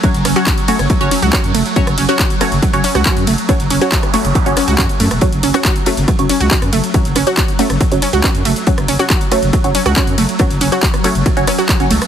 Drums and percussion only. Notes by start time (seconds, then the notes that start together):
0.03 kick, closed hi-hat, ride
0.14 snare, closed hi-hat
0.25 cross-stick, open hi-hat, ride
0.36 closed hi-hat
0.46 kick, snare, clap, closed hi-hat, ride
0.58 closed hi-hat
0.68 snare, open hi-hat, ride
0.79 cross-stick, closed hi-hat
0.90 kick, closed hi-hat, ride
1.01 closed hi-hat
1.11 open hi-hat, ride
1.22 closed hi-hat
1.33 kick, cross-stick, snare, clap, closed hi-hat, ride
1.43 closed hi-hat, ride
1.55 open hi-hat, ride
1.66 snare, closed hi-hat
1.76 kick, closed hi-hat, ride
1.87 cross-stick, closed hi-hat
1.98 open hi-hat, ride
2.09 closed hi-hat
2.19 kick, snare, clap, closed hi-hat, ride
2.30 closed hi-hat
2.41 cross-stick, open hi-hat, ride
2.52 snare, closed hi-hat
2.62 kick, closed hi-hat, ride
2.73 closed hi-hat
2.83 open hi-hat, ride
2.95 cross-stick, closed hi-hat
3.05 kick, snare, clap, closed hi-hat, ride
3.17 closed hi-hat, ride
3.27 open hi-hat, ride
3.38 closed hi-hat
3.49 kick, cross-stick, closed hi-hat, ride
3.59 snare, closed hi-hat
3.70 open hi-hat, ride
3.81 closed hi-hat
3.92 kick, snare, clap, closed hi-hat, ride
4.03 cross-stick, closed hi-hat
4.14 open hi-hat, ride
4.25 closed hi-hat
4.35 kick, closed hi-hat, ride
4.46 closed hi-hat
4.57 cross-stick, open hi-hat, ride
4.68 closed hi-hat
4.78 kick, snare, clap, closed hi-hat, ride
4.89 closed hi-hat, ride
5.00 open hi-hat, ride
5.11 cross-stick, closed hi-hat
5.21 kick, closed hi-hat, ride
5.33 closed hi-hat
5.43 open hi-hat, ride
5.54 cross-stick, closed hi-hat
5.64 kick, snare, clap, closed hi-hat, ride
5.76 closed hi-hat
5.86 open hi-hat, ride
5.97 snare, closed hi-hat
6.08 kick, cross-stick, closed hi-hat, ride
6.19 closed hi-hat
6.29 open hi-hat, ride
6.40 closed hi-hat
6.51 kick, snare, clap, closed hi-hat, ride
6.62 cross-stick, closed hi-hat, ride
6.73 open hi-hat, ride
6.84 closed hi-hat
6.94 kick, closed hi-hat, ride
7.05 snare, closed hi-hat
7.15 cross-stick, open hi-hat, ride
7.27 closed hi-hat
7.37 kick, snare, clap, closed hi-hat, ride
7.48 closed hi-hat
7.59 snare, open hi-hat, ride
7.70 cross-stick, closed hi-hat
7.81 kick, closed hi-hat, ride
7.92 closed hi-hat
8.02 open hi-hat, ride
8.13 closed hi-hat
8.24 kick, cross-stick, snare, clap, closed hi-hat, ride
8.34 closed hi-hat, ride
8.45 open hi-hat, ride
8.56 snare, closed hi-hat
8.66 kick, closed hi-hat, ride
8.78 cross-stick, closed hi-hat
8.88 open hi-hat, ride
8.99 closed hi-hat
9.10 kick, snare, clap, closed hi-hat, ride
9.21 closed hi-hat
9.32 cross-stick, open hi-hat, ride
9.42 snare, closed hi-hat
9.53 kick, closed hi-hat, ride
9.64 closed hi-hat
9.75 open hi-hat, ride
9.86 cross-stick, closed hi-hat
9.96 kick, snare, clap, closed hi-hat, ride
10.07 closed hi-hat, ride
10.18 open hi-hat, ride
10.29 closed hi-hat
10.39 kick, cross-stick, closed hi-hat, ride
10.50 snare, closed hi-hat
10.61 open hi-hat, ride
10.72 closed hi-hat
10.82 kick, snare, clap, closed hi-hat, ride
10.94 cross-stick, closed hi-hat
11.04 open hi-hat, ride
11.15 closed hi-hat
11.26 kick, closed hi-hat, ride
11.37 closed hi-hat
11.47 cross-stick, open hi-hat, ride
11.58 closed hi-hat
11.68 kick, snare, clap, closed hi-hat, ride
11.80 closed hi-hat, ride
11.91 open hi-hat, ride
12.01 cross-stick, snare, closed hi-hat